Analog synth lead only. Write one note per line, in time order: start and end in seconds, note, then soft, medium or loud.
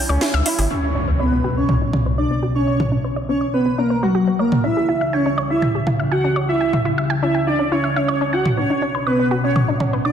0.09 0.36 C#4 loud
0.46 0.64 E4 medium
0.71 1.06 C#4 loud
1.20 1.46 B3 medium
1.57 1.74 C#4 medium
2.18 2.45 D4 medium
2.55 2.82 C#4 medium
3.29 3.47 C#4 medium
3.54 3.71 B3 medium
3.78 3.96 A#3 medium
4.03 4.29 F#3 medium
4.39 4.57 A#3 medium
4.64 5.00 E4 medium
5.13 5.40 C#4 medium
5.50 5.68 E4 medium
6.11 6.38 F#4 medium
6.49 6.75 E4 medium
7.22 7.40 E4 medium
7.47 7.65 D4 medium
7.72 7.89 C#4 medium
7.96 8.23 C#4 medium
8.33 8.51 F#4 medium
8.57 8.93 C#4 loud
9.07 9.33 B3 medium
9.44 9.61 C#4 medium
10.05 10.12 D4 medium